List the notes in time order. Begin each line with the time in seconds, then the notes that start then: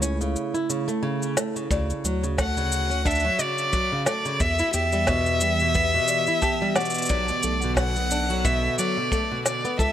Already playing: C#2 C#3 A3 E4
0.02 C#4, cabasa
0.21 C#3, cabasa
0.36 cabasa
0.54 E4, cabasa
0.70 C#3, cabasa
0.88 A3, cabasa
1.03 C#3
1.22 cabasa
1.37 A3, snare, cabasa
1.56 C#3, cabasa
1.71 D2 C#3 F#4 D5, kick, cabasa
1.90 cabasa
2.05 D2 F#3, cabasa
2.23 C#3, cabasa
2.38 A3 F#5, kick, snare, cabasa
2.57 C#3, cabasa
2.72 cabasa
2.90 C#4, cabasa
3.05 D4 E5, kick, cabasa
3.11 cabasa
3.15 cabasa
3.20 cabasa
3.25 F#3
3.39 C#3 D5, cabasa
3.58 cabasa
3.73 F#3, kick, cabasa
3.92 C#3
4.06 A3 D5, snare, cabasa
4.25 C#3, cabasa
4.40 E2 E3 B3 G4 E5, kick, cabasa
4.59 E4, cabasa
4.73 E2 G4 E5, cabasa
4.92 G3, cabasa
5.07 B2, kick, snare, cabasa
5.26 cabasa
5.41 G3, cabasa
5.60 B2, cabasa
5.74 B3, kick, cabasa
5.94 B2
6.08 D5, cabasa
6.27 E4, cabasa
6.42 G4 A5, kick, cabasa
6.62 G3
6.76 B2 D5 F#5, snare, cabasa
6.81 cabasa
6.85 cabasa
6.90 cabasa
6.94 cabasa
6.98 cabasa
7.02 cabasa
7.05 cabasa
7.09 B1 D3 F#3 A4 D5, kick, cabasa
7.28 B2, cabasa
7.43 B1 A3, cabasa
7.62 B2, cabasa
7.77 F#5, kick, snare, cabasa
7.96 B3, cabasa
8.11 D4, cabasa
8.30 F#3, cabasa
8.45 B2 E5, kick, cabasa
8.78 F#3 D5, cabasa
8.97 B2
9.12 A3, kick, cabasa
9.31 B2
9.46 D5, snare, cabasa
9.65 B3, cabasa
9.79 C#2 C#3 A3 E4 A4 E5, kick, cabasa